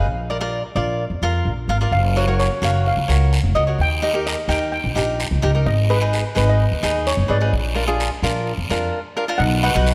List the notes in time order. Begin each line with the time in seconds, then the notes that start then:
Already playing: F5
0.06 A#1
0.30 F4 A#4 D5
0.41 F4 A#4 D5
0.75 A#1 F4 A#4 D5
1.10 F2
1.22 F2 F4 A#4 F5
1.45 A#1
1.68 G#1 F4 A#4 F5
1.81 F4 A#4 D5
1.91 F#1 F5, long guiro
2.16 F#4 A#4 C#5
2.27 F#4 A#4 C#5
2.40 C#5, short guiro
2.62 F#1 F#4 A#4 C#5 F5, short guiro
2.86 F5, long guiro
2.97 C#2
3.08 C#2 F#4 A#4 C#5, short guiro
3.33 short guiro
3.43 F1
3.54 C#2 F#4 A#4 D#5
3.67 F#4 A#4 C#5
3.78 D#2 G5, long guiro
4.02 D#4 G4 A#4 D#5
4.14 D#4 G4 A#4
4.27 D#5, short guiro
4.48 D#2 D#4 G4 A#4 G5, short guiro
4.72 G5, long guiro
4.84 A#1
4.95 A#1 D#4 G4 A#4, short guiro
5.20 short guiro
5.31 C#2
5.42 C#2 D#4 G4 A#4
5.55 D#4 G4 A#4
5.66 G#1 D#5, long guiro
5.90 D#4 G#4 B4
6.01 D#4 G#4 B4
6.13 short guiro
6.35 G#1 D#4 G#4 B4, short guiro
6.49 D#5
6.60 long guiro
6.71 D#2
6.83 D#2 D#4 G#4 B4, short guiro
7.07 C#5, short guiro
7.17 F#1
7.28 G#1 D#4 G#4 B4 D5
7.41 D#4 G#4 B4
7.53 A#1, long guiro
7.75 D4 F4 A#4
7.87 D4 F4 G#4
8.00 short guiro
8.22 A#1 D4 F4 A#4, short guiro
8.47 long guiro
8.58 F2
8.69 F2 D4 F4 A#4, short guiro
9.17 D4 F4 A#4
9.28 D4 F4 A#4
9.38 B1 D#5 F#5, long guiro
9.63 D#4 F#4 B4 D#5 F#5
9.75 B1 D#4 F#4 B4
9.86 short guiro